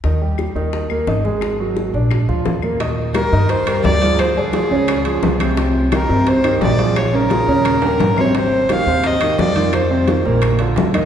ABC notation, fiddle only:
X:1
M:4/4
L:1/8
Q:1/4=173
K:Eb
V:1 name="Fiddle"
z8 | z8 | z2 B2 c2 d2 | c A6 z |
z2 B2 c2 d2 | _d B6 d | c2 f2 e2 d2 | c4 z4 |]